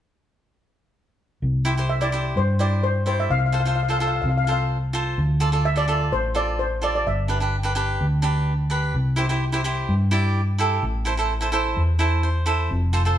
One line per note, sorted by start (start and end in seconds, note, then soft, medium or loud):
1.42 2.32 C2 medium
1.65 1.73 E4 medium
1.65 1.73 G4 medium
1.65 1.73 C5 medium
1.77 1.91 E4 medium
1.77 1.92 G4 medium
1.77 1.92 C5 medium
1.90 2.01 E5 medium
2.01 2.08 E4 medium
2.01 2.08 G4 medium
2.01 2.09 C5 medium
2.01 2.34 D5 medium
2.12 2.41 E4 medium
2.12 2.41 G4 medium
2.12 2.42 C5 medium
2.36 3.26 G2 medium
2.36 2.59 C5 medium
2.59 2.88 E4 medium
2.59 2.88 G4 medium
2.59 2.89 C5 medium
2.59 2.82 D5 medium
2.83 3.05 C5 medium
3.06 3.30 E4 medium
3.06 3.30 G4 medium
3.06 3.20 C5 medium
3.06 3.30 D5 medium
3.20 3.31 E5 medium
3.30 4.20 C2 medium
3.30 3.37 F5 medium
3.38 3.45 F5 medium
3.46 3.52 F5 medium
3.52 3.60 F4 medium
3.52 3.61 A4 medium
3.52 3.61 C5 medium
3.52 3.59 F5 medium
3.60 3.67 F5 medium
3.65 3.79 F4 medium
3.65 3.80 A4 medium
3.65 3.80 C5 medium
3.65 3.75 F5 soft
3.76 3.82 F5 medium
3.83 3.90 F5 medium
3.89 3.96 F4 medium
3.89 3.96 A4 medium
3.89 3.97 C5 medium
3.89 3.98 F5 medium
3.99 4.29 F4 medium
3.99 4.29 A4 medium
3.99 4.30 C5 medium
3.99 4.06 F5 soft
4.07 4.14 F5 medium
4.16 4.21 F5 soft
4.22 5.14 C2 medium
4.22 4.28 F5 medium
4.29 4.36 F5 medium
4.37 4.43 F5 medium
4.44 4.76 F4 medium
4.44 4.76 A4 soft
4.44 4.50 F5 medium
4.49 4.77 C5 medium
4.49 4.59 F5 medium
4.93 5.18 F4 medium
4.93 5.18 A4 medium
4.93 5.18 C5 medium
5.18 6.08 D2 medium
5.40 5.48 F4 medium
5.40 5.49 A4 medium
5.40 5.49 D5 medium
5.52 5.67 F4 medium
5.52 5.67 A4 medium
5.52 5.67 D5 medium
5.65 5.78 E5 medium
5.76 5.83 F4 medium
5.76 5.84 A4 medium
5.76 6.10 D5 medium
5.76 5.84 D5 medium
5.88 6.17 F4 medium
5.88 6.17 A4 medium
5.88 6.17 D5 medium
6.12 7.02 A1 medium
6.12 6.37 C5 medium
6.35 6.64 F4 medium
6.35 6.64 A4 medium
6.35 6.64 D5 medium
6.35 6.60 D5 medium
6.59 6.84 C5 medium
6.82 7.06 F4 medium
6.82 7.06 A4 medium
6.82 7.06 D5 medium
6.82 6.94 D5 medium
6.95 7.00 D5 medium
7.07 7.96 G1 medium
7.07 8.44 E5 medium
7.28 7.37 D4 medium
7.28 7.37 G4 soft
7.28 7.37 B4 medium
7.40 7.55 D4 medium
7.40 7.55 G4 medium
7.40 7.56 B4 medium
7.63 7.71 D4 medium
7.63 7.72 G4 medium
7.63 7.72 B4 medium
7.75 8.04 D4 medium
7.75 8.05 G4 medium
7.75 8.05 B4 medium
8.01 8.91 D2 medium
8.22 8.51 D4 medium
8.22 8.52 G4 medium
8.22 8.52 B4 medium
8.70 8.94 D4 medium
8.70 8.94 G4 medium
8.70 8.95 B4 medium
8.94 9.84 C2 medium
9.16 9.24 E4 medium
9.16 9.25 G4 medium
9.16 9.25 C5 medium
9.29 9.43 E4 medium
9.29 9.44 G4 medium
9.29 9.44 C5 medium
9.52 9.60 E4 medium
9.52 9.60 G4 medium
9.52 9.60 C5 medium
9.64 9.93 E4 medium
9.64 9.93 G4 medium
9.64 9.94 C5 medium
9.89 10.79 G2 medium
10.11 10.40 E4 medium
10.11 10.40 G4 medium
10.11 10.41 D5 medium
10.58 10.82 E4 medium
10.58 10.83 G4 medium
10.58 10.83 A4 medium
10.83 11.73 A1 medium
11.05 11.13 E4 medium
11.05 11.13 A4 medium
11.05 11.14 C5 medium
11.17 11.32 E4 medium
11.17 11.32 A4 medium
11.17 11.33 C5 medium
11.41 11.48 E4 medium
11.41 11.48 A4 medium
11.41 11.49 C5 medium
11.52 11.81 E4 medium
11.52 11.81 A4 medium
11.52 11.82 C5 medium
11.77 12.67 E2 medium
11.99 12.28 E4 medium
11.99 12.28 A4 medium
11.99 12.22 C5 medium
12.23 12.46 C5 medium
12.46 12.70 E4 medium
12.46 12.70 A4 medium
12.46 12.70 C5 medium
12.71 13.18 F1 medium
12.93 13.01 F4 medium
12.93 13.01 A4 medium
12.93 13.01 C5 medium
13.05 13.18 F4 medium
13.05 13.18 A4 medium
13.05 13.18 C5 medium